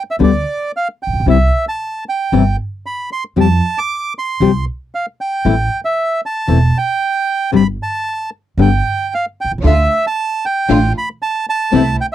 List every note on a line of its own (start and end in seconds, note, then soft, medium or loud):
0.11 0.16 E5 medium
0.19 0.43 D2 medium
0.19 0.29 D3 medium
0.19 0.30 G3 medium
0.19 0.30 B3 medium
0.19 0.29 D4 medium
0.19 0.30 G4 medium
0.23 0.72 D5 medium
0.77 0.88 F5 medium
1.03 1.26 G5 medium
1.07 1.13 A1 soft
1.13 1.19 A#1 medium
1.20 1.26 B1 medium
1.26 1.49 C2 medium
1.26 1.36 C3 medium
1.26 1.36 E3 medium
1.26 1.36 G3 medium
1.26 1.36 C4 medium
1.26 1.37 E4 medium
1.26 1.65 E5 medium
1.68 2.04 A5 medium
2.09 2.56 G5 medium
2.32 2.54 G1 medium
2.32 2.42 C3 medium
2.32 2.42 E3 medium
2.32 2.42 G3 medium
2.32 2.42 C4 medium
2.32 2.42 E4 medium
2.86 3.10 B5 medium
3.12 3.24 C6 medium
3.36 3.59 F2 medium
3.36 3.45 F3 medium
3.36 3.46 G3 medium
3.36 3.46 C4 medium
3.36 3.46 G4 medium
3.41 3.79 A5 medium
3.78 4.13 D6 medium
4.19 4.65 C6 medium
4.40 4.62 C2 medium
4.40 4.50 F3 medium
4.40 4.50 G3 medium
4.40 4.50 C4 medium
4.40 4.50 G4 medium
4.95 5.06 F5 medium
5.21 5.81 G5 medium
5.45 5.67 A1 medium
5.45 5.54 E3 medium
5.45 5.54 A3 medium
5.45 5.54 C4 medium
5.45 5.54 E4 medium
5.85 6.21 E5 medium
6.26 6.78 A5 medium
6.47 6.70 E1 medium
6.47 6.57 E3 medium
6.47 6.58 A3 medium
6.47 6.58 C4 medium
6.47 6.58 E4 medium
6.78 7.51 G5 medium
7.52 7.75 G1 medium
7.52 7.61 C3 medium
7.52 7.62 G3 medium
7.52 7.62 C4 medium
7.52 7.62 D4 medium
7.52 7.62 G4 medium
7.56 7.67 B5 medium
7.83 8.30 A5 medium
8.57 8.80 G1 medium
8.57 8.67 D3 medium
8.57 8.67 G3 medium
8.57 8.67 B3 medium
8.57 8.68 D4 medium
8.57 8.68 G4 medium
8.57 9.14 G5 medium
9.14 9.26 F5 medium
9.41 9.51 B1 soft
9.41 9.52 G5 medium
9.52 9.58 C2 medium
9.58 9.63 C#2 medium
9.64 9.86 D2 medium
9.64 9.73 D3 medium
9.64 9.73 A3 medium
9.64 9.86 A3 medium
9.64 9.73 D4 medium
9.64 9.86 D4 medium
9.64 9.86 F4 medium
9.64 9.73 F4 medium
9.64 10.06 E5 medium
10.07 10.45 A5 medium
10.45 10.93 G5 medium
10.69 10.91 A1 medium
10.69 10.78 D3 medium
10.69 10.77 A3 medium
10.69 10.91 A3 medium
10.69 10.78 D4 medium
10.69 10.91 D4 medium
10.69 10.91 F4 medium
10.69 10.78 F4 medium
10.98 11.09 B5 medium
11.22 11.46 A5 medium
11.49 11.96 A5 medium
11.72 11.95 C2 medium
11.72 11.81 C3 medium
11.72 11.81 E3 medium
11.72 11.81 A3 medium
11.72 11.94 A3 medium
11.72 11.81 C4 medium
11.72 11.95 C4 medium
11.72 11.81 E4 medium
11.72 11.95 E4 medium
12.01 12.06 G5 medium